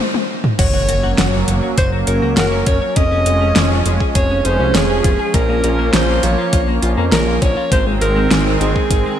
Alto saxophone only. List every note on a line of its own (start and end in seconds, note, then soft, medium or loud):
0.59 1.44 C#5 loud
1.78 1.91 C5 medium
2.07 2.35 A#4 medium
2.37 2.65 A#4 medium
2.67 2.98 C#5 loud
2.96 3.85 D#5 loud
4.15 4.47 C#5 loud
4.45 4.77 C5 loud
4.75 5.36 G#4 loud
5.34 5.95 A#4 loud
5.94 6.25 C5 loud
6.24 6.83 C#5 loud
7.13 7.44 A#4 loud
7.42 7.72 C#5 loud
7.72 7.85 C5 loud
8.02 8.57 A#4 loud
8.61 9.19 G#4 medium